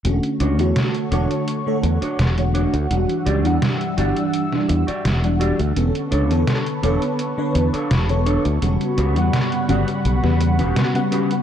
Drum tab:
HH |xxxxxxxxx-xxxxxx|xxxxxxxxx-xxxxxx|xxxxxxxxx-xxxxxx|xxxxxxxxx-xxxxxx|
SD |----o-------o---|----o----o--o---|----o-------o---|----o----o--o---|